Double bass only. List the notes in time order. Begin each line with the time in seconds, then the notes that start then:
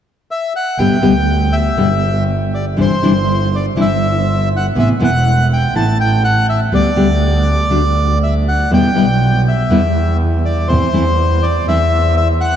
0.79 G1
1.03 D2
1.78 G1
2.79 G1
3.03 G1
3.78 G1
4.76 A1
5.02 E1
5.74 A1
6.72 D2
6.97 D2
7.71 D2
8.72 E2
8.97 B1
9.71 E2
10.71 E2
10.94 E2
11.69 E2